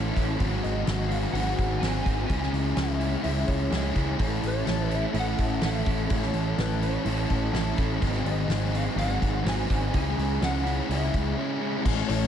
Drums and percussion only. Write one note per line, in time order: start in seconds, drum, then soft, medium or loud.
0.16 kick medium
0.16 open hi-hat medium
0.40 kick loud
0.40 open hi-hat medium
0.64 open hi-hat medium
0.87 snare loud
0.87 open hi-hat medium
1.11 open hi-hat medium
1.35 open hi-hat medium
1.59 kick medium
1.59 open hi-hat soft
1.83 snare loud
1.83 open hi-hat medium
2.06 kick medium
2.06 open hi-hat soft
2.30 kick loud
2.30 open hi-hat medium
2.43 snare soft
2.54 open hi-hat soft
2.77 snare loud
2.77 open hi-hat medium
3.01 open hi-hat medium
3.24 open hi-hat medium
3.48 kick medium
3.48 open hi-hat medium
3.72 snare loud
3.72 open hi-hat medium
3.96 kick medium
3.96 open hi-hat medium
4.20 kick loud
4.20 open hi-hat medium
4.43 open hi-hat medium
4.67 snare loud
4.67 open hi-hat medium
4.91 open hi-hat medium
5.14 open hi-hat medium
5.38 kick medium
5.38 open hi-hat medium
5.62 snare loud
5.62 open hi-hat medium
5.86 kick medium
5.86 open hi-hat medium
6.10 kick loud
6.10 open hi-hat medium
6.22 snare soft
6.34 open hi-hat medium
6.58 snare loud
6.58 open hi-hat medium
6.82 open hi-hat medium
7.06 open hi-hat medium
7.30 kick medium
7.30 open hi-hat soft
7.55 snare loud
7.55 open hi-hat medium
7.78 kick medium
7.78 open hi-hat medium
8.02 kick loud
8.02 open hi-hat medium
8.13 snare soft
8.26 open hi-hat medium
8.50 snare loud
8.50 open hi-hat medium
8.75 open hi-hat medium
8.98 open hi-hat medium
9.22 kick medium
9.22 open hi-hat medium
9.46 snare loud
9.46 open hi-hat medium
9.70 kick medium
9.70 open hi-hat medium
9.94 kick loud
9.94 open hi-hat medium
10.19 open hi-hat medium
10.42 snare loud
10.42 open hi-hat medium
10.67 open hi-hat medium
10.91 open hi-hat medium
11.14 kick medium
11.14 open hi-hat soft
11.86 kick loud
11.86 crash loud
12.09 open hi-hat medium